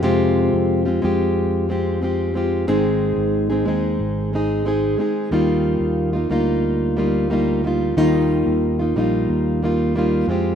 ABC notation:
X:1
M:4/4
L:1/16
Q:1/4=91
K:Eb
V:1 name="Steel-string acoustic guitar"
[F,,C,A,CFG]4- [F,,C,A,CFG] [A,CFG] [A,CFG]4 [A,CFG]2 [A,CFG]2 [A,CFG]2 | [A,,E,A,CEA]4- [A,,E,A,CEA] [A,CEA] [A,CEA]4 [A,CEA]2 [A,CEA]2 [A,CEA]2 | [E,G,B,EF]4- [E,G,B,EF] [B,EF] [G,B,EF]4 [G,B,EF]2 [G,B,EF]2 [G,B,EF]2 | [E,G,B,EF]4- [E,G,B,EF] [B,EF] [G,B,EF]4 [G,B,EF]2 [G,B,EF]2 [A,CFG]2 |]
V:2 name="Fingered electric bass" clef=bass
F,,3 F,,3 F,,8- F,,2 | A,,,3 A,,,3 E,,2 A,,,6 z2 | E,,3 E,,3 D,,8- D,,2 | E,,3 E,,3 B,,,2 E,,6 F,,2 |]